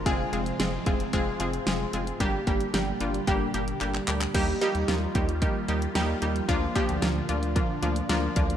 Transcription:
<<
  \new Staff \with { instrumentName = "Synth pluck" } { \time 4/4 \key ees \major \tempo 4 = 112 <aes c' f' aes'>8 <aes c' f' aes'>8 <aes c' f' aes'>8 <aes c' f' aes'>8 <aes c' f' aes'>8 <aes c' f' aes'>8 <aes c' f' aes'>8 <aes c' f' aes'>8 | <g bes d' g'>8 <g bes d' g'>8 <g bes d' g'>8 <g bes d' f'>8 <g bes d' g'>8 <g bes d' g'>8 <g bes d' g'>8 <g bes d' g'>8 | <g bes ees' g'>8 <g bes ees' g'>8 <g bes ees' f'>8 <g bes ees' g'>8 <g bes ees' g'>8 <g bes ees' g'>8 <g bes ees' g'>8 <g bes ees' g'>8 | <f bes d' f'>8 <f bes d' g'>8 <f bes d' f'>8 <f bes d' f'>8 <f bes d' f'>8 <f bes d' f'>8 <f bes d' f'>8 <f bes d' f'>8 | }
  \new Staff \with { instrumentName = "Analog synth pad" } { \clef bass \time 4/4 \key ees \major << { f'1 | g'1 | f'1~ | f'1 | } \\ { <aes, c f c'>1 | <bes, d g d'>1 | <ees f g bes>1 | <bes, d d'>1 | } >> }
  \new Staff \with { instrumentName = "Analog synth bass" } { \clef bass \time 4/4 \key ees \major f,,8 f,,8 f,,8 f,,8 f,,8 f,,8 f,,8 f,,8 | g,,8 g,,8 g,,8 g,,8 g,,8 g,,8 g,,8 d,8 | ees,8 r16 ees,16 ees,8 ees,8. r16 ees,8 ees,8 ees,8 | d,8 r16 d,16 d,8 d,8. r16 d,8 d,8 d,8 | }
  \new DrumStaff \with { instrumentName = "Drums" } \drummode { \time 4/4 <hh bd>8 hh16 hh16 <hh sn>8 <hh bd>16 hh16 <hh bd>8 hh16 hh16 <hh sn>8 hh16 hh16 | <hh bd>8 <hh bd>16 hh16 <hh sn>8 hh16 hh16 <hh bd>8 hh16 hh16 <hc hh>16 hc16 <hc hh>16 <hc hh>16 | <cymc hh bd>8 hh16 hh16 <hh sn>8 <hh bd>16 hh16 <hh bd>8 hh16 hh16 <hh sn>8 hh16 hh16 | <hh bd>8 <hh bd>16 hh16 <hh sn>8 hh16 hh16 <hh bd>8 hh16 hh16 <hh sn>8 <hh bd>16 hh16 | }
>>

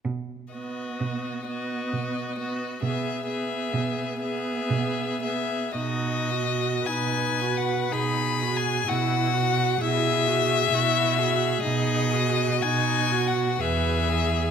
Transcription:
<<
  \new Staff \with { instrumentName = "Violin" } { \time 3/4 \key b \major \tempo 4 = 63 r8 dis''4 dis''4 dis''8 | e''8 e''4 e''4 e''8 | dis''4 \tuplet 3/2 { gis''4 fis''8 b''4 gis''8 } | fis''4 e''2 |
dis''4 \tuplet 3/2 { gis''4 fis''8 } e''4 | }
  \new Staff \with { instrumentName = "Violin" } { \time 3/4 \key b \major r8 fis'4 fis'4 fis'8 | gis'8 gis'4 gis'4 gis'8 | fis'4 b'4 gis'4 | fis'4 gis'4 fis'8 gis'8~ |
gis'4 fis'4 gis'4 | }
  \new Staff \with { instrumentName = "Viola" } { \time 3/4 \key b \major r8 b4 b4 b8 | b8 b4 b4 b8 | dis'8 fis'8 dis'8 fis'8 dis'8 fis'8 | e'8 fis'8 e'8 fis'8 e'8 fis'8 |
dis'8 fis'8 dis'8 fis'8 b'8 gis'8 | }
  \new Staff \with { instrumentName = "Cello" } { \clef bass \time 3/4 \key b \major b,4 b,4 b,4 | b,4 b,4 b,4 | b,4 b,4 b,4 | b,4 b,4 b,4 |
b,4 b,4 e,4 | }
>>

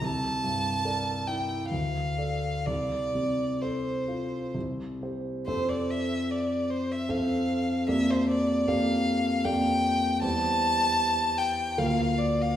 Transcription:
<<
  \new Staff \with { instrumentName = "Violin" } { \time 3/4 \key f \major \tempo 4 = 74 a''4. g''8 f''4 | d''4 c''4 r4 | c''16 d''16 e''8 d''8 c''16 e''16 f''4 | e''16 c''16 d''8 f''4 g''4 |
a''4. g''8 f''8 d''16 f''16 | }
  \new Staff \with { instrumentName = "Grand piano" } { \time 3/4 \key f \major c,8 g,8 <bes' d''>8 e'8 d,8 <a' d''>8 | c,8 c8 <a' c''>8 f'8 c,8 <g' c''>8 | <f, c' a' c''>2 <f, c' a' c''>4 | <f, bes g' d''>4 <f, bes g' d''>4 <f, bes g' d''>4 |
<e, g g' c''>2 <d, bes f' bes'>4 | }
>>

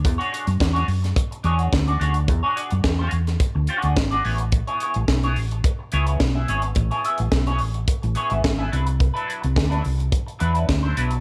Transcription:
<<
  \new Staff \with { instrumentName = "Clean electric guitar" } { \time 4/4 \key a \major \tempo 4 = 107 r16 <d' fis' gis' cis''>16 <d' fis' gis' cis''>16 r8 <d' fis' gis' cis''>16 r4 <d' fis' gis' cis''>16 <d' fis' gis' cis''>16 r16 <d' fis' gis' d''>16 <d' fis' gis' cis''>16 r16 | r16 <d' fis' gis' cis''>16 <d' fis' gis' d''>16 r8 <d' fis' gis' cis''>16 r4 <d' fis' gis' cis''>16 <d' fis' gis' d''>16 r16 <d' fis' gis' d''>16 <b e' gis' cis''>16 r16 | r16 <b e' gis' cis''>16 <b e' gis' cis''>16 r8 <b e' gis' cis''>16 r4 <b e' gis' cis''>16 <b e' gis' cis''>16 r16 <b e' gis' e''>16 <b e' gis' cis''>16 r16 | r16 <b e' gis' cis''>16 <b e' gis' e''>16 r8 <b e' gis' cis''>16 r4 <b e' gis' cis''>16 <b e' gis' e''>16 r16 <b e' gis' e''>16 <fis d' e' b'>16 r16 |
r16 <fis d' e' b'>16 <fis d' e' b'>16 r8 <fis d' e' b'>16 r4 <fis d' e' b'>16 <fis d' e' b'>16 r16 <fis d' e' c''>16 <fis d' e' b'>16 r16 | }
  \new Staff \with { instrumentName = "Fingered electric bass" } { \clef bass \time 4/4 \key a \major e,16 r8 fis,16 e,8 fis,8 r8 e,8 d,8 d,8 | e,16 r8 fis,16 e,8 e,8 r16 d,16 r16 d,16 gis,,8 a,,8~ | a,,16 r8 a,,16 b,,8 a,,8 r8 cis,8 b,,8 gis,,8 | a,,16 r8 a,,16 b,,8 a,,8 r16 a,,16 r16 gis,,16 gis,,8 c,8~ |
c,16 r8 c,16 d,8 c,8 r8 e,8 d,8 b,,8 | }
  \new DrumStaff \with { instrumentName = "Drums" } \drummode { \time 4/4 <hh bd>16 hh16 hh16 hh16 <bd sn>16 hh16 hho16 <hh sn>16 <hh bd>16 hh16 hh16 hh16 <bd sn>16 hh16 hh16 hh16 | <hh bd>8 hh16 hh16 <bd sn>8 hh16 <hh sn>16 <hh bd>8 hh16 hh16 <bd sn>16 hh16 hho16 hh16 | <hh bd>16 hh16 hh16 hh16 <bd sn>16 hh16 hho16 hh16 <hh bd>8 hh16 hh16 <bd sn>8 hh16 hh16 | <hh bd>16 hh16 hh16 hh16 <bd sn>16 hh16 hho16 hh16 <hh bd>16 hh16 hh16 hh16 <bd sn>8 hh16 hh16 |
<hh bd>16 hh16 hh16 hh16 <bd sn>16 hh16 hho16 hh16 <hh bd>16 hh16 hh16 hh16 <bd sn>8 hh16 hh16 | }
>>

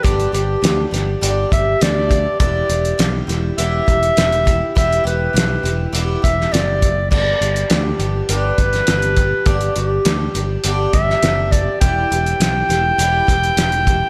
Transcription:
<<
  \new Staff \with { instrumentName = "Clarinet" } { \time 4/4 \key g \major \tempo 4 = 102 g'8 g'4. r8 e''8 d''4 | d''4. r8 e''2 | e''8 b'4. r8 e''8 d''4 | d''4. r8 b'2 |
g'8 g'4. r8 e''4 d''8 | g''1 | }
  \new Staff \with { instrumentName = "Twelve-string acoustic guitar" } { \time 4/4 \key g \major <g, d g b d' g'>8 <g b d' g'>8 <g b d' g'>8 <g b d' g'>8 <g, d g b d' g'>8 <g b d' g'>8 <g b d' g'>8 <g b d' g'>8 | <e g b e' g'>8 <b e' g'>8 <g b e' g'>8 <b e' g'>8 <e g b e' g'>8 <b e' g'>8 <g b e' g'>8 <b e' g'>8 | <e g b e' g'>8 <b e' g'>8 <g b e' g'>8 <b e' g'>8 <e g b e' g'>8 <b e' g'>8 <g b e' g'>8 <b e' g'>8 | <g, d g b d' g'>8 <g b d' g'>8 <g b d' g'>8 <g b d' g'>8 <g, d g b d' g'>8 <g b d' g'>8 <g b d' g'>8 <g b d' g'>8 |
<g, d g b d' g'>8 <g b d' g'>8 <g b d' g'>8 <g b d' g'>8 <g, d g b d' g'>8 <g b d' g'>8 <g b d' g'>8 <g b d' g'>8 | <e g b e' g'>8 <b e' g'>8 <g b e' g'>8 <b e' g'>8 <e g b e' g'>8 <b e' g'>8 <g b e' g'>8 <b e' g'>8 | }
  \new Staff \with { instrumentName = "Picked electric bass" } { \clef bass \time 4/4 \key g \major g,,8 g,,8 d,8 g,,8 g,,8 g,,8 d,4 | e,,8 e,,8 b,,8 e,,8 e,,8 e,,8 e,,4 | e,,8 e,,8 b,,8 e,,8 e,,8 e,,8 fis,,4 | g,,8 g,,8 d,8 g,,8 g,,8 g,,8 g,,4 |
g,,8 g,,8 d,8 g,,8 g,,8 g,,8 fis,,4 | e,,8 e,,8 b,,8 e,,8 e,,8 e,,8 e,,4 | }
  \new DrumStaff \with { instrumentName = "Drums" } \drummode { \time 4/4 <hh bd>16 hh16 hh8 <hh sn>8 <hh sn>8 hh8 <hh bd>8 <hh sn>8 <hh bd>8 | <hh bd>8 hh16 hh16 <hh sn>8 <hh sn>8 hh8 <hh bd>16 hh16 <hh sn>16 hh16 <hh bd>8 | <hh bd>16 hh16 hh8 <hh sn>8 hh8 hh8 <hh bd>16 sn16 <hh sn>8 <hh bd>8 | <cymc bd>8 hh16 hh16 <hh sn>8 hh8 hh8 <hh bd>16 <hh sn>16 <hh sn>16 hh16 <hh bd>8 |
<hh bd>16 hh16 hh8 <hh sn>8 hh8 hh8 <hh bd>16 sn16 <hh sn>8 <hh bd>8 | <hh bd>8 hh16 hh16 <hh sn>8 <hh sn>8 hh8 <hh bd>16 hh16 <hh sn>16 hh16 <hh bd>8 | }
>>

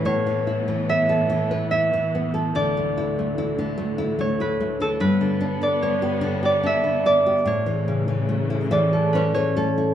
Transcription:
<<
  \new Staff \with { instrumentName = "Harp" } { \time 3/4 \key a \mixolydian \tempo 4 = 73 cis''4 e''4 e''4 | d''2 cis''16 b'8 a'16 | b'8. d''16 cis''8. d''16 e''8 d''8 | cis''4. d''8 b'16 cis''8. | }
  \new Staff \with { instrumentName = "Nylon-string guitar" } { \time 3/4 \key a \mixolydian << { r2. | r2. | r2. | r4. e''8 cis''16 b'16 a'8 | } \\ { a,16 e16 e'16 e16 b16 a'16 e16 b'16 e'16 e16 b16 a'16 | d16 a16 e'16 a16 e'16 d16 a16 e'16 a16 e'16 a16 d16 | g,16 d16 d'16 d16 b16 g'16 d16 g'16 d'16 d16 b16 g'16 | a,16 e16 cis16 e16 a16 e'16 e16 a'16 cis'16 e16 a16 e'16 | } >> }
  \new Staff \with { instrumentName = "String section" } { \clef bass \time 3/4 \key a \mixolydian <a, e b>2. | <d, a,>2. | <g, d b>2. | <a, cis e>2. | }
>>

